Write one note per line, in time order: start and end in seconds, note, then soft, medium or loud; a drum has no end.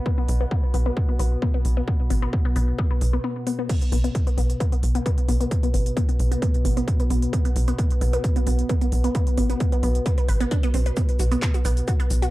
0.00 3.68 B2 medium
0.00 3.68 B3 medium
0.06 0.08 B3 medium
0.06 kick loud
0.18 0.22 B3 medium
0.28 0.46 B1 loud
0.28 open hi-hat loud
0.41 0.43 B3 medium
0.51 0.56 B3 medium
0.51 kick loud
0.74 0.91 B1 medium
0.74 0.77 B3 medium
0.74 open hi-hat medium
0.86 0.90 B3 medium
0.97 kick loud
1.09 1.11 B3 medium
1.19 1.37 B1 medium
1.19 1.24 B3 medium
1.19 open hi-hat loud
1.42 1.45 B3 medium
1.42 kick loud
1.54 1.58 B3 medium
1.65 1.82 B1 medium
1.65 open hi-hat medium
1.77 1.79 B3 medium
1.88 1.92 B3 medium
1.88 kick loud
2.10 2.27 A1 medium
2.10 2.13 B3 medium
2.10 open hi-hat loud
2.22 2.26 B3 medium
2.33 kick loud
2.45 2.47 B3 medium
2.56 2.73 B1 medium
2.56 2.60 B3 medium
2.56 open hi-hat medium
2.79 2.81 B3 medium
2.79 kick loud
2.91 2.94 B3 medium
3.01 3.18 B1 medium
3.01 open hi-hat medium
3.13 3.16 B3 medium
3.24 3.28 B3 medium
3.47 3.49 B3 medium
3.47 open hi-hat medium
3.59 3.63 B3 medium
3.69 12.30 B2 medium
3.69 3.74 B3 medium
3.69 12.30 B3 medium
3.69 kick loud
3.69 closed hi-hat medium
3.69 crash medium
3.82 closed hi-hat medium
3.92 4.09 B1 loud
3.92 3.95 B3 medium
3.92 open hi-hat loud
4.04 4.08 B3 medium
4.04 closed hi-hat medium
4.15 kick loud
4.15 closed hi-hat medium
4.27 4.29 B3 medium
4.27 closed hi-hat medium
4.38 4.55 B1 medium
4.38 4.42 B3 medium
4.38 open hi-hat medium
4.50 closed hi-hat medium
4.60 4.63 B3 medium
4.60 kick loud
4.60 closed hi-hat medium
4.72 4.76 B3 medium
4.72 closed hi-hat medium
4.83 5.00 B1 medium
4.83 open hi-hat loud
4.95 4.97 B3 medium
4.95 closed hi-hat medium
5.06 5.10 B3 medium
5.06 kick loud
5.06 closed hi-hat medium
5.18 closed hi-hat medium
5.28 5.46 B1 medium
5.28 5.31 B3 medium
5.28 open hi-hat loud
5.41 5.44 B3 medium
5.41 closed hi-hat medium
5.51 kick loud
5.51 closed hi-hat medium
5.63 5.66 B3 medium
5.63 closed hi-hat medium
5.74 5.91 A1 medium
5.74 5.78 B3 medium
5.74 open hi-hat loud
5.86 closed hi-hat medium
5.97 5.99 B3 medium
5.97 kick loud
5.97 closed hi-hat medium
6.09 6.13 B3 medium
6.09 closed hi-hat medium
6.19 6.37 B1 medium
6.19 open hi-hat medium
6.31 6.34 B3 medium
6.31 closed hi-hat medium
6.42 6.46 B3 medium
6.42 kick loud
6.42 closed hi-hat medium
6.54 closed hi-hat medium
6.65 6.82 A1 medium
6.65 6.67 B3 medium
6.65 open hi-hat loud
6.77 6.81 B3 medium
6.77 closed hi-hat medium
6.88 kick loud
6.88 closed hi-hat medium
7.00 7.02 B3 medium
7.00 closed hi-hat medium
7.10 7.27 B1 medium
7.10 7.15 B3 medium
7.10 open hi-hat loud
7.22 closed hi-hat medium
7.33 7.36 B3 medium
7.33 kick loud
7.33 closed hi-hat medium
7.45 7.49 B3 medium
7.45 closed hi-hat medium
7.56 7.73 B1 loud
7.56 open hi-hat loud
7.68 7.70 B3 medium
7.68 closed hi-hat medium
7.79 7.83 B3 medium
7.79 kick loud
7.79 closed hi-hat medium
7.91 closed hi-hat medium
8.01 8.18 B1 medium
8.01 8.04 B3 medium
8.01 open hi-hat loud
8.13 8.17 B3 medium
8.13 closed hi-hat medium
8.24 kick loud
8.24 closed hi-hat medium
8.36 8.38 B3 medium
8.36 closed hi-hat medium
8.47 8.64 B1 medium
8.47 8.51 B3 medium
8.47 open hi-hat loud
8.59 closed hi-hat medium
8.69 8.72 B3 medium
8.69 kick loud
8.69 closed hi-hat medium
8.81 8.85 B3 medium
8.81 closed hi-hat medium
8.92 9.09 B1 medium
8.92 open hi-hat loud
9.04 9.06 B3 medium
9.04 closed hi-hat medium
9.15 9.19 B3 medium
9.15 kick loud
9.15 closed hi-hat medium
9.27 closed hi-hat medium
9.38 9.55 A1 medium
9.38 9.40 B3 medium
9.38 open hi-hat loud
9.50 9.53 B3 medium
9.50 closed hi-hat soft
9.60 kick loud
9.60 closed hi-hat medium
9.72 9.75 B3 medium
9.72 closed hi-hat medium
9.83 10.00 B1 loud
9.83 9.87 B3 medium
9.83 open hi-hat loud
9.95 closed hi-hat medium
10.06 10.08 B3 medium
10.06 kick loud
10.06 closed hi-hat medium
10.18 10.22 B3 medium
10.18 closed hi-hat soft
10.28 10.46 A1 medium
10.28 10.35 B4 medium
10.28 open hi-hat loud
10.40 10.44 B3 loud
10.40 closed hi-hat soft
10.51 10.56 D4 loud
10.51 kick loud
10.51 closed hi-hat medium
10.63 10.67 B3 loud
10.63 closed hi-hat medium
10.74 10.91 B1 medium
10.74 10.78 C4 medium
10.74 open hi-hat loud
10.86 10.90 B4 medium
10.86 closed hi-hat soft
10.97 11.01 B3 medium
10.97 kick loud
10.97 closed hi-hat medium
10.97 shaker soft
11.09 closed hi-hat soft
11.19 11.37 B1 loud
11.19 11.22 F#4 medium
11.19 open hi-hat loud
11.19 shaker medium
11.31 11.35 B3 medium
11.31 closed hi-hat soft
11.31 shaker soft
11.42 kick loud
11.42 clap loud
11.42 closed hi-hat medium
11.42 shaker soft
11.54 11.57 F#4 medium
11.54 closed hi-hat medium
11.54 shaker soft
11.65 11.82 B1 medium
11.65 11.69 B3 medium
11.65 open hi-hat medium
11.65 shaker medium
11.77 closed hi-hat soft
11.77 shaker soft
11.88 11.90 F#4 medium
11.88 kick loud
11.88 closed hi-hat medium
11.88 shaker soft
12.00 12.03 B3 medium
12.00 closed hi-hat soft
12.10 12.27 B1 medium
12.10 open hi-hat loud
12.10 shaker medium
12.22 12.25 F#4 medium
12.22 closed hi-hat soft
12.22 shaker soft